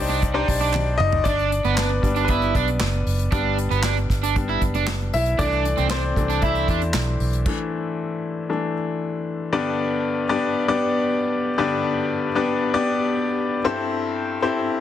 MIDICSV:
0, 0, Header, 1, 5, 480
1, 0, Start_track
1, 0, Key_signature, 1, "major"
1, 0, Tempo, 516351
1, 1169, Time_signature, 4, 2, 24, 8
1, 13761, End_track
2, 0, Start_track
2, 0, Title_t, "Upright piano"
2, 0, Program_c, 0, 0
2, 0, Control_c, 0, 64, 127
2, 0, Note_on_c, 0, 43, 79
2, 0, Note_on_c, 0, 62, 82
2, 0, Note_on_c, 0, 63, 70
2, 0, Note_on_c, 0, 67, 74
2, 0, Note_on_c, 0, 72, 78
2, 0, Note_on_c, 0, 74, 92
2, 294, Note_off_c, 0, 62, 0
2, 295, Note_off_c, 0, 63, 0
2, 295, Note_off_c, 0, 72, 0
2, 295, Note_off_c, 0, 74, 0
2, 296, Note_off_c, 0, 67, 0
2, 317, Note_on_c, 0, 72, 83
2, 318, Note_on_c, 0, 63, 71
2, 319, Note_on_c, 0, 62, 95
2, 322, Note_on_c, 0, 67, 78
2, 322, Note_on_c, 0, 74, 98
2, 907, Note_on_c, 0, 75, 109
2, 919, Note_off_c, 0, 63, 0
2, 932, Note_on_c, 0, 63, 83
2, 1083, Note_off_c, 0, 62, 0
2, 1083, Note_off_c, 0, 72, 0
2, 1085, Note_off_c, 0, 67, 0
2, 1085, Note_off_c, 0, 74, 0
2, 1140, Note_off_c, 0, 75, 0
2, 1151, Note_on_c, 0, 74, 103
2, 1154, Note_off_c, 0, 63, 0
2, 1169, Note_on_c, 0, 62, 79
2, 1182, Control_c, 0, 64, 0
2, 1185, Note_off_c, 0, 43, 0
2, 1319, Control_c, 0, 64, 127
2, 1606, Note_off_c, 0, 74, 0
2, 1615, Note_off_c, 0, 62, 0
2, 1628, Note_on_c, 0, 71, 72
2, 1657, Note_on_c, 0, 59, 63
2, 1869, Note_off_c, 0, 59, 0
2, 1875, Note_on_c, 0, 55, 49
2, 1883, Note_on_c, 0, 59, 49
2, 1883, Note_on_c, 0, 62, 60
2, 2072, Note_off_c, 0, 71, 0
2, 2086, Note_on_c, 0, 71, 82
2, 2106, Note_off_c, 0, 59, 0
2, 2120, Note_on_c, 0, 59, 59
2, 2566, Note_off_c, 0, 55, 0
2, 2570, Note_off_c, 0, 62, 0
2, 2791, Note_off_c, 0, 71, 0
2, 2808, Note_off_c, 0, 59, 0
2, 3078, Note_on_c, 0, 55, 53
2, 3085, Note_on_c, 0, 59, 57
2, 3090, Note_on_c, 0, 62, 62
2, 3768, Note_off_c, 0, 55, 0
2, 3772, Note_off_c, 0, 59, 0
2, 3774, Note_off_c, 0, 62, 0
2, 4050, Note_on_c, 0, 55, 49
2, 4051, Note_on_c, 0, 59, 45
2, 4053, Note_on_c, 0, 62, 57
2, 4266, Note_off_c, 0, 55, 0
2, 4267, Note_off_c, 0, 59, 0
2, 4268, Note_off_c, 0, 62, 0
2, 4774, Note_on_c, 0, 76, 102
2, 4778, Note_on_c, 0, 64, 80
2, 4996, Note_off_c, 0, 76, 0
2, 4998, Note_off_c, 0, 64, 0
2, 5001, Note_on_c, 0, 52, 57
2, 5008, Note_on_c, 0, 57, 51
2, 5008, Note_on_c, 0, 74, 100
2, 5014, Note_on_c, 0, 62, 75
2, 5024, Control_c, 0, 64, 0
2, 5194, Control_c, 0, 64, 127
2, 5325, Note_off_c, 0, 52, 0
2, 5328, Note_off_c, 0, 57, 0
2, 5456, Note_off_c, 0, 74, 0
2, 5461, Note_off_c, 0, 62, 0
2, 5490, Note_on_c, 0, 72, 86
2, 5501, Note_on_c, 0, 60, 67
2, 5729, Note_on_c, 0, 52, 47
2, 5733, Note_on_c, 0, 57, 44
2, 5736, Note_on_c, 0, 62, 52
2, 5943, Note_off_c, 0, 60, 0
2, 5946, Note_off_c, 0, 52, 0
2, 5948, Note_off_c, 0, 57, 0
2, 5950, Note_off_c, 0, 62, 0
2, 5966, Note_on_c, 0, 76, 84
2, 5985, Note_off_c, 0, 72, 0
2, 5985, Note_on_c, 0, 64, 70
2, 6652, Note_off_c, 0, 76, 0
2, 6662, Note_off_c, 0, 64, 0
2, 6933, Note_on_c, 0, 52, 58
2, 6942, Note_on_c, 0, 57, 47
2, 6944, Note_on_c, 0, 62, 61
2, 7880, Note_off_c, 0, 52, 0
2, 7884, Note_off_c, 0, 57, 0
2, 7885, Note_off_c, 0, 62, 0
2, 7894, Note_on_c, 0, 52, 46
2, 7898, Note_on_c, 0, 57, 39
2, 7899, Note_on_c, 0, 62, 55
2, 8110, Note_off_c, 0, 52, 0
2, 8111, Note_off_c, 0, 57, 0
2, 8112, Note_off_c, 0, 62, 0
2, 8854, Note_on_c, 0, 50, 75
2, 8855, Note_on_c, 0, 59, 88
2, 8855, Note_on_c, 0, 62, 83
2, 8855, Note_on_c, 0, 74, 90
2, 8856, Note_on_c, 0, 43, 81
2, 8856, Note_on_c, 0, 67, 74
2, 8857, Note_on_c, 0, 71, 86
2, 8865, Control_c, 0, 64, 0
2, 9010, Control_c, 0, 64, 127
2, 9505, Note_off_c, 0, 62, 0
2, 9506, Note_off_c, 0, 59, 0
2, 9506, Note_off_c, 0, 67, 0
2, 9506, Note_off_c, 0, 74, 0
2, 9507, Note_off_c, 0, 71, 0
2, 9536, Note_off_c, 0, 50, 0
2, 9537, Note_off_c, 0, 43, 0
2, 9568, Note_on_c, 0, 74, 99
2, 9569, Note_on_c, 0, 59, 85
2, 9569, Note_on_c, 0, 67, 74
2, 9570, Note_on_c, 0, 62, 72
2, 9570, Note_on_c, 0, 71, 83
2, 9896, Note_off_c, 0, 74, 0
2, 9897, Note_off_c, 0, 59, 0
2, 9897, Note_off_c, 0, 62, 0
2, 9897, Note_off_c, 0, 67, 0
2, 9897, Note_off_c, 0, 71, 0
2, 9930, Note_on_c, 0, 71, 73
2, 9931, Note_on_c, 0, 59, 93
2, 9931, Note_on_c, 0, 67, 85
2, 9932, Note_on_c, 0, 74, 103
2, 9936, Note_on_c, 0, 62, 84
2, 10691, Note_off_c, 0, 71, 0
2, 10692, Note_off_c, 0, 59, 0
2, 10692, Note_off_c, 0, 67, 0
2, 10692, Note_off_c, 0, 74, 0
2, 10694, Note_off_c, 0, 62, 0
2, 10764, Note_on_c, 0, 59, 84
2, 10764, Note_on_c, 0, 67, 86
2, 10766, Note_on_c, 0, 43, 80
2, 10766, Note_on_c, 0, 50, 81
2, 10766, Note_on_c, 0, 62, 84
2, 10766, Note_on_c, 0, 71, 86
2, 10767, Note_on_c, 0, 74, 96
2, 11420, Note_off_c, 0, 59, 0
2, 11420, Note_off_c, 0, 67, 0
2, 11421, Note_off_c, 0, 62, 0
2, 11421, Note_off_c, 0, 71, 0
2, 11421, Note_off_c, 0, 74, 0
2, 11452, Note_off_c, 0, 43, 0
2, 11452, Note_off_c, 0, 50, 0
2, 11484, Note_on_c, 0, 62, 81
2, 11488, Note_on_c, 0, 59, 85
2, 11488, Note_on_c, 0, 74, 86
2, 11489, Note_on_c, 0, 67, 82
2, 11489, Note_on_c, 0, 71, 79
2, 11814, Note_off_c, 0, 62, 0
2, 11816, Note_off_c, 0, 59, 0
2, 11816, Note_off_c, 0, 67, 0
2, 11816, Note_off_c, 0, 71, 0
2, 11816, Note_off_c, 0, 74, 0
2, 11840, Note_on_c, 0, 71, 84
2, 11842, Note_on_c, 0, 59, 88
2, 11842, Note_on_c, 0, 67, 80
2, 11842, Note_on_c, 0, 74, 106
2, 11844, Note_on_c, 0, 62, 81
2, 12606, Note_off_c, 0, 71, 0
2, 12607, Note_off_c, 0, 59, 0
2, 12607, Note_off_c, 0, 67, 0
2, 12607, Note_off_c, 0, 74, 0
2, 12608, Note_off_c, 0, 62, 0
2, 12684, Note_on_c, 0, 64, 85
2, 12686, Note_on_c, 0, 60, 88
2, 12687, Note_on_c, 0, 43, 84
2, 12687, Note_on_c, 0, 67, 80
2, 12687, Note_on_c, 0, 69, 91
2, 12688, Note_on_c, 0, 72, 101
2, 12705, Control_c, 0, 64, 0
2, 12875, Control_c, 0, 64, 127
2, 13339, Note_off_c, 0, 64, 0
2, 13341, Note_off_c, 0, 60, 0
2, 13341, Note_off_c, 0, 67, 0
2, 13341, Note_off_c, 0, 69, 0
2, 13341, Note_off_c, 0, 72, 0
2, 13373, Note_off_c, 0, 43, 0
2, 13408, Note_on_c, 0, 69, 72
2, 13409, Note_on_c, 0, 72, 93
2, 13410, Note_on_c, 0, 67, 79
2, 13411, Note_on_c, 0, 64, 86
2, 13412, Note_on_c, 0, 60, 80
2, 13736, Note_off_c, 0, 69, 0
2, 13736, Note_off_c, 0, 72, 0
2, 13737, Note_off_c, 0, 64, 0
2, 13737, Note_off_c, 0, 67, 0
2, 13738, Note_off_c, 0, 60, 0
2, 13761, End_track
3, 0, Start_track
3, 0, Title_t, "Overdriven electric guitar"
3, 0, Program_c, 1, 29
3, 82, Note_on_c, 1, 62, 83
3, 199, Note_off_c, 1, 62, 0
3, 316, Note_on_c, 1, 63, 76
3, 436, Note_off_c, 1, 63, 0
3, 564, Note_on_c, 1, 62, 67
3, 680, Note_off_c, 1, 62, 0
3, 1166, Note_on_c, 1, 62, 97
3, 1395, Note_off_c, 1, 62, 0
3, 1534, Note_on_c, 1, 59, 82
3, 1645, Note_off_c, 1, 59, 0
3, 1656, Note_on_c, 1, 62, 71
3, 1766, Note_off_c, 1, 62, 0
3, 2013, Note_on_c, 1, 62, 74
3, 2125, Note_off_c, 1, 62, 0
3, 2132, Note_on_c, 1, 64, 82
3, 2358, Note_off_c, 1, 64, 0
3, 2376, Note_on_c, 1, 62, 81
3, 2487, Note_off_c, 1, 62, 0
3, 3089, Note_on_c, 1, 62, 89
3, 3317, Note_off_c, 1, 62, 0
3, 3450, Note_on_c, 1, 59, 69
3, 3564, Note_off_c, 1, 59, 0
3, 3573, Note_on_c, 1, 62, 86
3, 3685, Note_off_c, 1, 62, 0
3, 3936, Note_on_c, 1, 62, 76
3, 4047, Note_off_c, 1, 62, 0
3, 4175, Note_on_c, 1, 64, 81
3, 4287, Note_off_c, 1, 64, 0
3, 4419, Note_on_c, 1, 62, 70
3, 4529, Note_off_c, 1, 62, 0
3, 5009, Note_on_c, 1, 62, 99
3, 5238, Note_off_c, 1, 62, 0
3, 5370, Note_on_c, 1, 60, 84
3, 5485, Note_off_c, 1, 60, 0
3, 5491, Note_on_c, 1, 62, 79
3, 5605, Note_off_c, 1, 62, 0
3, 5855, Note_on_c, 1, 62, 84
3, 5967, Note_off_c, 1, 62, 0
3, 5978, Note_on_c, 1, 64, 89
3, 6203, Note_off_c, 1, 64, 0
3, 6218, Note_on_c, 1, 62, 90
3, 6329, Note_off_c, 1, 62, 0
3, 13761, End_track
4, 0, Start_track
4, 0, Title_t, "Fingered electric bass"
4, 0, Program_c, 2, 33
4, 0, Note_on_c, 2, 36, 92
4, 414, Note_off_c, 2, 36, 0
4, 448, Note_on_c, 2, 35, 84
4, 895, Note_off_c, 2, 35, 0
4, 918, Note_on_c, 2, 30, 86
4, 1146, Note_off_c, 2, 30, 0
4, 1165, Note_on_c, 2, 31, 93
4, 1501, Note_off_c, 2, 31, 0
4, 1529, Note_on_c, 2, 31, 85
4, 1864, Note_off_c, 2, 31, 0
4, 1887, Note_on_c, 2, 31, 91
4, 2335, Note_off_c, 2, 31, 0
4, 2371, Note_on_c, 2, 35, 80
4, 2593, Note_off_c, 2, 35, 0
4, 2610, Note_on_c, 2, 30, 98
4, 2832, Note_off_c, 2, 30, 0
4, 2847, Note_on_c, 2, 30, 71
4, 3071, Note_off_c, 2, 30, 0
4, 3091, Note_on_c, 2, 31, 98
4, 3425, Note_off_c, 2, 31, 0
4, 3449, Note_on_c, 2, 31, 80
4, 3784, Note_off_c, 2, 31, 0
4, 3810, Note_on_c, 2, 31, 78
4, 4256, Note_off_c, 2, 31, 0
4, 4288, Note_on_c, 2, 30, 89
4, 4736, Note_off_c, 2, 30, 0
4, 4774, Note_on_c, 2, 35, 83
4, 4996, Note_off_c, 2, 35, 0
4, 5373, Note_on_c, 2, 36, 96
4, 5707, Note_off_c, 2, 36, 0
4, 5727, Note_on_c, 2, 36, 92
4, 6175, Note_off_c, 2, 36, 0
4, 6214, Note_on_c, 2, 40, 76
4, 6436, Note_off_c, 2, 40, 0
4, 6453, Note_on_c, 2, 35, 91
4, 6676, Note_off_c, 2, 35, 0
4, 6695, Note_on_c, 2, 35, 83
4, 6917, Note_off_c, 2, 35, 0
4, 13761, End_track
5, 0, Start_track
5, 0, Title_t, "Drums"
5, 204, Note_on_c, 9, 46, 87
5, 208, Note_on_c, 9, 44, 71
5, 209, Note_on_c, 9, 36, 99
5, 297, Note_off_c, 9, 46, 0
5, 301, Note_off_c, 9, 44, 0
5, 302, Note_off_c, 9, 36, 0
5, 448, Note_on_c, 9, 36, 88
5, 450, Note_on_c, 9, 44, 65
5, 453, Note_on_c, 9, 46, 82
5, 541, Note_off_c, 9, 36, 0
5, 543, Note_off_c, 9, 44, 0
5, 545, Note_off_c, 9, 46, 0
5, 682, Note_on_c, 9, 39, 88
5, 694, Note_on_c, 9, 48, 58
5, 775, Note_off_c, 9, 39, 0
5, 787, Note_off_c, 9, 48, 0
5, 930, Note_on_c, 9, 45, 83
5, 1023, Note_off_c, 9, 45, 0
5, 1046, Note_on_c, 9, 43, 94
5, 1139, Note_off_c, 9, 43, 0
5, 1164, Note_on_c, 9, 42, 93
5, 1166, Note_on_c, 9, 36, 113
5, 1257, Note_off_c, 9, 42, 0
5, 1258, Note_off_c, 9, 36, 0
5, 1292, Note_on_c, 9, 42, 36
5, 1385, Note_off_c, 9, 42, 0
5, 1415, Note_on_c, 9, 42, 73
5, 1508, Note_off_c, 9, 42, 0
5, 1530, Note_on_c, 9, 42, 48
5, 1623, Note_off_c, 9, 42, 0
5, 1649, Note_on_c, 9, 39, 86
5, 1650, Note_off_c, 9, 39, 0
5, 1650, Note_on_c, 9, 39, 97
5, 1651, Note_on_c, 9, 38, 125
5, 1743, Note_off_c, 9, 39, 0
5, 1744, Note_off_c, 9, 38, 0
5, 1887, Note_on_c, 9, 36, 75
5, 1894, Note_on_c, 9, 42, 74
5, 1980, Note_off_c, 9, 36, 0
5, 1987, Note_off_c, 9, 42, 0
5, 2005, Note_on_c, 9, 42, 51
5, 2098, Note_off_c, 9, 42, 0
5, 2119, Note_on_c, 9, 42, 90
5, 2128, Note_on_c, 9, 36, 89
5, 2212, Note_off_c, 9, 42, 0
5, 2221, Note_off_c, 9, 36, 0
5, 2248, Note_on_c, 9, 42, 35
5, 2341, Note_off_c, 9, 42, 0
5, 2368, Note_on_c, 9, 36, 78
5, 2371, Note_on_c, 9, 42, 77
5, 2461, Note_off_c, 9, 36, 0
5, 2464, Note_off_c, 9, 42, 0
5, 2489, Note_on_c, 9, 42, 54
5, 2582, Note_off_c, 9, 42, 0
5, 2604, Note_on_c, 9, 39, 86
5, 2605, Note_on_c, 9, 38, 114
5, 2606, Note_off_c, 9, 39, 0
5, 2606, Note_on_c, 9, 39, 87
5, 2698, Note_off_c, 9, 38, 0
5, 2699, Note_off_c, 9, 39, 0
5, 2726, Note_on_c, 9, 42, 30
5, 2819, Note_off_c, 9, 42, 0
5, 2851, Note_on_c, 9, 46, 69
5, 2944, Note_off_c, 9, 46, 0
5, 2967, Note_on_c, 9, 42, 52
5, 3060, Note_off_c, 9, 42, 0
5, 3087, Note_on_c, 9, 36, 117
5, 3087, Note_on_c, 9, 42, 100
5, 3180, Note_off_c, 9, 36, 0
5, 3180, Note_off_c, 9, 42, 0
5, 3332, Note_on_c, 9, 42, 77
5, 3425, Note_off_c, 9, 42, 0
5, 3452, Note_on_c, 9, 42, 44
5, 3544, Note_off_c, 9, 42, 0
5, 3561, Note_on_c, 9, 39, 94
5, 3563, Note_on_c, 9, 38, 113
5, 3573, Note_off_c, 9, 39, 0
5, 3573, Note_on_c, 9, 39, 86
5, 3656, Note_off_c, 9, 38, 0
5, 3666, Note_off_c, 9, 39, 0
5, 3691, Note_on_c, 9, 42, 32
5, 3784, Note_off_c, 9, 42, 0
5, 3809, Note_on_c, 9, 36, 81
5, 3810, Note_on_c, 9, 38, 28
5, 3816, Note_on_c, 9, 42, 71
5, 3902, Note_off_c, 9, 36, 0
5, 3903, Note_off_c, 9, 38, 0
5, 3909, Note_off_c, 9, 42, 0
5, 3937, Note_on_c, 9, 42, 58
5, 4030, Note_off_c, 9, 42, 0
5, 4053, Note_on_c, 9, 42, 79
5, 4054, Note_on_c, 9, 36, 99
5, 4146, Note_off_c, 9, 42, 0
5, 4147, Note_off_c, 9, 36, 0
5, 4174, Note_on_c, 9, 42, 31
5, 4267, Note_off_c, 9, 42, 0
5, 4290, Note_on_c, 9, 36, 87
5, 4293, Note_on_c, 9, 42, 89
5, 4383, Note_off_c, 9, 36, 0
5, 4385, Note_off_c, 9, 42, 0
5, 4411, Note_on_c, 9, 42, 54
5, 4504, Note_off_c, 9, 42, 0
5, 4528, Note_on_c, 9, 39, 89
5, 4529, Note_on_c, 9, 38, 104
5, 4531, Note_off_c, 9, 39, 0
5, 4531, Note_on_c, 9, 39, 82
5, 4622, Note_off_c, 9, 38, 0
5, 4624, Note_off_c, 9, 39, 0
5, 4653, Note_on_c, 9, 42, 33
5, 4746, Note_off_c, 9, 42, 0
5, 4773, Note_on_c, 9, 46, 74
5, 4866, Note_off_c, 9, 46, 0
5, 4888, Note_on_c, 9, 42, 45
5, 4981, Note_off_c, 9, 42, 0
5, 5010, Note_on_c, 9, 36, 104
5, 5010, Note_on_c, 9, 42, 96
5, 5103, Note_off_c, 9, 36, 0
5, 5103, Note_off_c, 9, 42, 0
5, 5133, Note_on_c, 9, 42, 34
5, 5226, Note_off_c, 9, 42, 0
5, 5255, Note_on_c, 9, 42, 69
5, 5348, Note_off_c, 9, 42, 0
5, 5369, Note_on_c, 9, 42, 48
5, 5462, Note_off_c, 9, 42, 0
5, 5485, Note_on_c, 9, 39, 96
5, 5487, Note_on_c, 9, 38, 122
5, 5500, Note_off_c, 9, 39, 0
5, 5500, Note_on_c, 9, 39, 85
5, 5580, Note_off_c, 9, 38, 0
5, 5593, Note_off_c, 9, 39, 0
5, 5730, Note_on_c, 9, 36, 90
5, 5737, Note_on_c, 9, 42, 66
5, 5823, Note_off_c, 9, 36, 0
5, 5830, Note_off_c, 9, 42, 0
5, 5853, Note_on_c, 9, 42, 52
5, 5946, Note_off_c, 9, 42, 0
5, 5967, Note_on_c, 9, 42, 78
5, 5973, Note_on_c, 9, 36, 102
5, 6060, Note_off_c, 9, 42, 0
5, 6066, Note_off_c, 9, 36, 0
5, 6091, Note_on_c, 9, 42, 36
5, 6184, Note_off_c, 9, 42, 0
5, 6211, Note_on_c, 9, 36, 86
5, 6215, Note_on_c, 9, 42, 78
5, 6304, Note_off_c, 9, 36, 0
5, 6308, Note_off_c, 9, 42, 0
5, 6336, Note_on_c, 9, 42, 52
5, 6429, Note_off_c, 9, 42, 0
5, 6448, Note_on_c, 9, 39, 85
5, 6450, Note_on_c, 9, 38, 109
5, 6451, Note_off_c, 9, 39, 0
5, 6451, Note_on_c, 9, 39, 91
5, 6543, Note_off_c, 9, 38, 0
5, 6544, Note_off_c, 9, 39, 0
5, 6695, Note_on_c, 9, 46, 67
5, 6788, Note_off_c, 9, 46, 0
5, 6815, Note_on_c, 9, 42, 49
5, 6908, Note_off_c, 9, 42, 0
5, 6932, Note_on_c, 9, 49, 87
5, 6933, Note_on_c, 9, 36, 108
5, 7025, Note_off_c, 9, 49, 0
5, 7026, Note_off_c, 9, 36, 0
5, 13761, End_track
0, 0, End_of_file